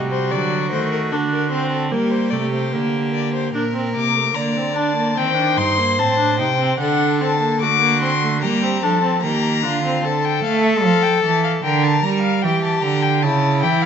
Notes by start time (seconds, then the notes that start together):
Already playing: C3 G3 F#4
0.12 C5
0.31 D3 F#3 D5
0.71 D#3 A3 C5
0.92 A#4
1.11 D3 D4 A4
1.32 A#4
1.51 C4 C5
1.71 A4
1.91 G3 A#3 G4 A#4
2.10 C5
2.31 C3 A3 D5
2.52 C5
2.73 D3 A#3 A#4
3.14 D5
3.34 C5
3.54 A#2 D4 A#4
3.74 C4
3.94 C3 A#3 D6
4.15 A3
4.34 D3 A#3 D5 A#5
4.57 C4
4.75 D4 A5
4.96 A#3
5.17 D#3 C4 C5 G5
5.37 D4
5.57 G2 D#4 C6
5.78 A#3
5.99 A2 C4 A5
6.19 D4
6.39 C3 D#4 G5
6.59 C4
6.80 D3 D4 A4 F#5
7.21 C4 A5
7.40 A#3
7.61 D3 A3 F#4 D6
7.81 A#3
8.01 C4 C6
8.22 A3
8.42 G3 A#3 G4 A#5
8.63 C4
8.83 F3 D4 A4 A5
9.03 C4
9.22 D#3 A#3 G4 A#5
9.63 D3 D4 F4
9.84 C4
10.04 D3 A4 A5
10.25 G5
10.44 A3 F5
10.64 E5
10.83 F3 F5
11.03 G5
11.23 E3 A5
11.44 F5
11.63 D3 A#4 G5
11.83 A5
12.03 G3 A#5
12.22 F5
12.42 E3 G4 G5
12.64 A5
12.82 D3 A#5
13.02 G5
13.22 C#3 E4 A5
13.62 E3 G5
13.82 F5